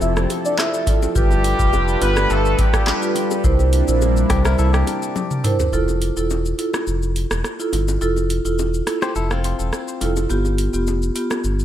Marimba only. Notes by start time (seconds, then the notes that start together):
0.87 E4 F4 A4
1.16 F4 G4 B4
1.59 F4 G4 B4
2.01 F4 G4 B4
3.02 F4 G4 B4
3.44 E4 A#4 C5
3.88 E4 A#4 C5
4.30 E4 A#4 C5
5.44 E4 A#4 C5
5.73 E4 F4 A4
6.17 E4 F4 A4
6.59 E4 F4 A4
7.59 E4 F4 A4
8.01 E4 F4 A4
8.45 E4 F4 A4
8.87 E4 F4 A4
10.01 E4 F4 A4
10.30 B3 F4 G4
10.74 B3 F4 G4
11.15 B3 F4 G4